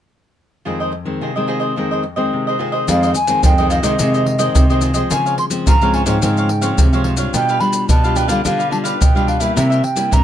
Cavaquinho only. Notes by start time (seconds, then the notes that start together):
0.65 F4 G#4 C5 D#5
0.80 G#4 C5 D#5
0.92 muted cavaquinho stroke
1.21 F4 G#4 C5 D#5
1.36 G#4 C5 D#5
1.47 F4 G#4 C5 D#5
1.60 G#4 C5 D#5
1.76 F4 G#4 C5 D#5
1.91 G#4 C5 D#5
2.03 muted cavaquinho stroke
2.16 G#4 C5 D#5
2.47 G#4 C5 D#5
2.59 F4 G#4 C5 D#5
2.72 G#4 C5 D#5
2.88 F4 G#4 C5 D#5
3.03 G#4 C5 D#5
3.16 muted cavaquinho stroke
3.44 F4 G#4 C5 D#5
3.58 G#4 C5 D#5
3.70 F4 G#4 C5 D#5
3.83 G#4 C5 D#5
4.00 F4 G#4 C5 D#5
4.14 G#4 C5 D#5
4.27 muted cavaquinho stroke
4.39 G#4 C5 D#5
4.70 G#4 C5 D#5
4.82 F4 G#4 C5 D#5
4.94 G#4 C5 D#5
5.10 F4 C5 C#5 F5
5.26 C5 C#5 F5
5.38 muted cavaquinho stroke
5.67 F4 C5 C#5 F5
5.82 C5 C#5 F5
5.94 F4 C5 C#5 F5
6.06 C5 C#5 F5
6.23 F4 C5 C#5 F5
6.38 C5 C#5 F5
6.49 muted cavaquinho stroke
6.61 C5 C#5 F5
6.93 C5 C#5 F5
7.05 F4 C5 C#5 F5
7.18 C5 C#5 F5
7.34 D4 G4 B4 F5
7.49 G4 B4 F5
7.61 muted cavaquinho stroke
7.90 D4 G4 B4 F5
8.04 G4 B4 F5
8.16 D4 G4 B4 F5
8.28 G4 B4 F5
8.44 D4 G4 B4 F5
8.59 G4 B4 F5
8.71 muted cavaquinho stroke
8.84 G4 B4 F5
9.16 G4 B4 F5
9.27 D4 G4 B4 F5
9.40 G4 B4 F5
9.56 E4 A#4 C5 E5
9.70 A#4 C5 E5
9.83 muted cavaquinho stroke
10.11 E4 A#4 C5 E5